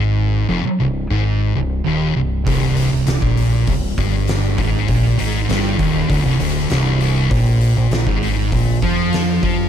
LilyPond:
<<
  \new Staff \with { instrumentName = "Distorted electric guitar" } { \clef bass \time 4/4 \key c \minor \tempo 4 = 99 aes,8. f,16 r16 c,8 aes,8. c,8 ees,8 c,8 | c,8. c,16 c,16 bes,8. c,8 g,4 aes,8 | bes,8 aes,8 g,8 ees,8 d,16 c,16 d,8 c,4 | bes,8. bes,16 bes,16 aes,8. bes,8 f4 f8 | }
  \new Staff \with { instrumentName = "Distorted electric guitar" } { \clef bass \time 4/4 \key c \minor aes,8. f,16 r16 c,8 aes,8. c,8 ees,8 c,8 | c,8. c,16 c,16 bes,8. c,8 g,4 aes,8 | bes,8 aes,8 g,8 ees,8 d,16 c,16 d,8 c,4 | bes,8. bes,16 bes,16 aes,8. bes,8 f4 f8 | }
  \new Staff \with { instrumentName = "Fingered electric bass" } { \clef bass \time 4/4 \key c \minor aes,,8. f,,16 r16 c,,8 aes,,8. c,,8 ees,,8 c,,8 | c,,8. c,,16 c,,16 bes,,8. c,,8 g,,4 aes,,8 | bes,,8 aes,,8 g,,8 ees,,8 d,,16 c,,16 d,,8 c,,4 | bes,,8. bes,,16 bes,,16 aes,,8. bes,,8 f,4 f,8 | }
  \new DrumStaff \with { instrumentName = "Drums" } \drummode { \time 4/4 r4 r4 r4 r4 | <hho bd>8 hho8 <hho sn>16 bd16 hho8 <hho bd>8 <hho bd>8 <hho sn>8 <hho bd>8 | <hho bd>8 hho8 <hho sn>8 <hho bd>8 <hho bd>8 hho8 <hho sn>8 hho8 | <hho bd>8 hho8 <hho sn>16 bd16 hho8 <hho bd>8 <hho bd>8 <hho sn>8 <hho bd>8 | }
>>